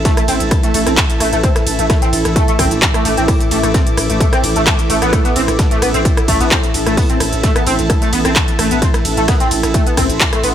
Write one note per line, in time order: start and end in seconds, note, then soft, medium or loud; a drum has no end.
0.00 10.54 A2 medium
0.00 10.54 E3 medium
0.00 10.54 E4 medium
0.00 10.54 A4 medium
0.00 10.54 E5 medium
0.00 2.51 A5 medium
0.05 0.12 A3 medium
0.05 kick loud
0.05 snare loud
0.05 closed hi-hat medium
0.05 ride medium
0.17 0.21 A3 loud
0.17 cross-stick medium
0.17 closed hi-hat medium
0.17 closed hi-hat soft
0.28 0.40 A1 loud
0.28 0.32 C4 loud
0.28 closed hi-hat medium
0.28 open hi-hat loud
0.28 ride medium
0.40 0.51 A1 medium
0.40 closed hi-hat medium
0.51 kick loud
0.51 cross-stick medium
0.51 closed hi-hat medium
0.51 ride medium
0.63 0.69 A3 medium
0.63 snare soft
0.63 closed hi-hat medium
0.74 0.86 A1 loud
0.74 0.78 A3 loud
0.74 closed hi-hat medium
0.74 open hi-hat loud
0.74 ride medium
0.87 0.97 A1 medium
0.87 0.90 C4 loud
0.87 cross-stick medium
0.87 closed hi-hat medium
0.97 kick loud
0.97 snare loud
0.97 clap loud
0.97 closed hi-hat medium
0.97 ride medium
1.10 closed hi-hat soft
1.10 closed hi-hat medium
1.20 1.32 A1 loud
1.20 1.27 A3 medium
1.20 cross-stick medium
1.20 closed hi-hat medium
1.20 open hi-hat loud
1.20 ride medium
1.33 1.43 A1 medium
1.33 1.36 A3 loud
1.33 closed hi-hat medium
1.44 1.47 C4 loud
1.44 kick loud
1.44 closed hi-hat medium
1.44 ride medium
1.56 cross-stick medium
1.56 snare medium
1.56 closed hi-hat medium
1.67 1.78 A1 loud
1.67 closed hi-hat medium
1.67 open hi-hat loud
1.67 ride medium
1.79 1.89 A1 medium
1.79 1.85 A3 medium
1.79 closed hi-hat medium
1.90 1.94 A3 loud
1.90 kick loud
1.90 cross-stick medium
1.90 snare loud
1.90 closed hi-hat medium
1.90 ride medium
2.02 2.05 C4 loud
2.02 snare soft
2.02 closed hi-hat medium
2.13 2.24 A1 loud
2.13 closed hi-hat medium
2.13 open hi-hat loud
2.13 ride medium
2.25 2.36 A1 medium
2.25 cross-stick medium
2.25 snare soft
2.25 closed hi-hat medium
2.36 2.42 A3 medium
2.36 kick loud
2.36 closed hi-hat medium
2.36 ride medium
2.48 2.52 A3 loud
2.48 6.20 D6 medium
2.48 closed hi-hat medium
2.59 2.71 A1 loud
2.59 2.63 C4 loud
2.59 kick medium
2.59 cross-stick medium
2.59 closed hi-hat medium
2.59 open hi-hat loud
2.59 ride medium
2.71 2.82 A1 medium
2.71 closed hi-hat medium
2.82 kick loud
2.82 snare loud
2.82 clap loud
2.82 closed hi-hat medium
2.94 3.00 A3 medium
2.94 cross-stick medium
2.94 closed hi-hat medium
2.94 closed hi-hat soft
3.05 3.17 A1 loud
3.05 3.09 A3 loud
3.05 snare soft
3.05 closed hi-hat medium
3.05 open hi-hat loud
3.05 ride medium
3.17 3.28 A1 medium
3.17 3.21 C4 loud
3.17 closed hi-hat medium
3.28 kick loud
3.28 cross-stick medium
3.28 closed hi-hat medium
3.28 open hi-hat medium
3.28 ride medium
3.40 closed hi-hat medium
3.40 closed hi-hat soft
3.51 3.63 A1 loud
3.51 3.58 A3 medium
3.51 closed hi-hat medium
3.51 open hi-hat loud
3.51 ride medium
3.63 3.74 A1 medium
3.63 3.67 A3 loud
3.63 cross-stick medium
3.63 closed hi-hat medium
3.74 3.78 C4 loud
3.74 kick loud
3.74 snare loud
3.74 closed hi-hat medium
3.74 ride medium
3.87 closed hi-hat medium
3.87 closed hi-hat soft
3.97 4.09 A1 loud
3.97 cross-stick medium
3.97 closed hi-hat medium
3.97 open hi-hat loud
3.97 ride medium
4.10 4.20 A1 medium
4.10 4.15 A3 medium
4.10 closed hi-hat medium
4.20 4.24 A3 loud
4.20 kick loud
4.20 closed hi-hat medium
4.20 ride medium
4.33 4.36 C4 loud
4.33 cross-stick medium
4.33 snare medium
4.33 closed hi-hat medium
4.43 4.55 A1 loud
4.43 closed hi-hat medium
4.43 open hi-hat loud
4.43 ride medium
4.56 4.66 A1 medium
4.56 4.62 A3 medium
4.56 closed hi-hat medium
4.67 4.73 A3 medium
4.67 kick loud
4.67 cross-stick medium
4.67 snare loud
4.67 clap loud
4.67 closed hi-hat medium
4.67 ride medium
4.79 closed hi-hat medium
4.79 closed hi-hat soft
4.90 5.01 A1 loud
4.90 4.94 A3 loud
4.90 closed hi-hat medium
4.90 open hi-hat loud
4.90 ride medium
5.02 5.13 A1 medium
5.02 5.11 B3 medium
5.02 cross-stick medium
5.02 closed hi-hat medium
5.13 5.19 A3 medium
5.13 kick loud
5.13 cross-stick medium
5.13 closed hi-hat medium
5.13 ride medium
5.25 5.28 B3 medium
5.25 snare medium
5.25 closed hi-hat medium
5.36 5.48 A1 loud
5.36 5.40 C4 loud
5.36 closed hi-hat medium
5.36 open hi-hat loud
5.36 ride medium
5.48 5.59 A1 medium
5.48 cross-stick medium
5.48 closed hi-hat soft
5.59 kick loud
5.59 snare loud
5.59 closed hi-hat medium
5.59 ride medium
5.71 5.77 A3 medium
5.71 snare soft
5.71 closed hi-hat medium
5.82 5.94 A1 loud
5.82 5.86 B3 medium
5.82 cross-stick medium
5.82 closed hi-hat medium
5.82 open hi-hat loud
5.82 ride medium
5.94 6.05 A1 medium
5.94 5.98 C4 loud
5.94 snare soft
5.94 closed hi-hat medium
6.05 kick loud
6.05 closed hi-hat medium
6.05 ride medium
6.17 9.90 A5 medium
6.17 cross-stick medium
6.17 closed hi-hat medium
6.28 6.40 A1 loud
6.28 6.35 A3 medium
6.28 kick medium
6.28 closed hi-hat medium
6.28 open hi-hat loud
6.28 ride medium
6.40 6.51 A1 medium
6.40 6.44 B3 medium
6.40 closed hi-hat medium
6.51 6.55 C4 loud
6.51 kick loud
6.51 cross-stick medium
6.51 snare loud
6.51 clap loud
6.51 closed hi-hat medium
6.63 closed hi-hat soft
6.74 6.86 A1 loud
6.74 snare soft
6.74 closed hi-hat medium
6.74 open hi-hat loud
6.74 ride medium
6.86 6.97 A1 medium
6.86 6.92 A3 medium
6.86 cross-stick medium
6.86 closed hi-hat medium
6.97 7.01 B3 medium
6.97 kick loud
6.97 closed hi-hat medium
6.97 open hi-hat medium
6.97 ride medium
7.10 7.13 C4 loud
7.10 closed hi-hat soft
7.20 7.32 A1 loud
7.20 cross-stick medium
7.20 closed hi-hat medium
7.20 open hi-hat loud
7.20 ride medium
7.33 7.43 A1 medium
7.33 closed hi-hat medium
7.43 7.50 A3 medium
7.43 kick loud
7.43 snare loud
7.43 closed hi-hat medium
7.43 ride medium
7.56 7.59 B3 medium
7.56 cross-stick medium
7.56 closed hi-hat medium
7.56 closed hi-hat soft
7.67 7.78 A1 loud
7.67 7.70 C4 loud
7.67 closed hi-hat medium
7.67 open hi-hat loud
7.67 ride medium
7.79 7.90 A1 medium
7.79 closed hi-hat medium
7.90 kick loud
7.90 cross-stick medium
7.90 closed hi-hat medium
7.90 ride medium
8.02 8.08 A3 medium
8.02 snare medium
8.02 closed hi-hat medium
8.13 8.25 A1 loud
8.13 8.17 B3 medium
8.13 closed hi-hat medium
8.13 open hi-hat loud
8.13 ride medium
8.25 8.36 A1 medium
8.25 8.28 C4 loud
8.25 cross-stick medium
8.25 closed hi-hat medium
8.36 kick loud
8.36 snare loud
8.36 clap loud
8.36 closed hi-hat medium
8.36 ride medium
8.48 closed hi-hat medium
8.48 closed hi-hat soft
8.59 8.71 A1 loud
8.59 8.65 A3 medium
8.59 cross-stick medium
8.59 closed hi-hat medium
8.59 open hi-hat loud
8.59 ride medium
8.71 8.82 A1 medium
8.71 8.75 B3 medium
8.71 closed hi-hat medium
8.82 8.86 C4 loud
8.82 kick loud
8.82 closed hi-hat medium
8.82 ride medium
8.94 cross-stick medium
8.94 snare medium
8.94 closed hi-hat medium
9.05 9.17 A1 loud
9.05 closed hi-hat medium
9.05 open hi-hat loud
9.05 ride medium
9.17 9.28 A1 medium
9.17 9.23 A3 medium
9.17 closed hi-hat medium
9.28 9.32 B3 medium
9.28 kick loud
9.28 cross-stick medium
9.28 snare loud
9.28 closed hi-hat medium
9.28 ride medium
9.40 9.44 C4 loud
9.40 snare soft
9.40 closed hi-hat medium
9.51 9.63 A1 loud
9.51 closed hi-hat medium
9.51 open hi-hat loud
9.51 ride medium
9.63 9.74 A1 medium
9.63 cross-stick medium
9.63 snare soft
9.63 closed hi-hat medium
9.74 9.81 A3 medium
9.74 kick loud
9.74 closed hi-hat medium
9.74 ride medium
9.87 9.90 B3 medium
9.87 10.54 C6 medium
9.87 closed hi-hat medium
9.97 10.09 A1 loud
9.97 10.01 C4 loud
9.97 kick medium
9.97 cross-stick medium
9.97 closed hi-hat medium
9.97 open hi-hat loud
9.97 ride medium
10.10 10.20 A1 medium
10.10 closed hi-hat medium
10.20 kick loud
10.20 snare loud
10.20 clap loud
10.20 closed hi-hat medium
10.33 10.38 A3 medium
10.33 cross-stick medium
10.33 closed hi-hat soft
10.33 closed hi-hat medium
10.43 10.54 A1 loud
10.43 10.47 B3 medium
10.43 snare soft
10.43 closed hi-hat medium
10.43 open hi-hat loud
10.43 ride medium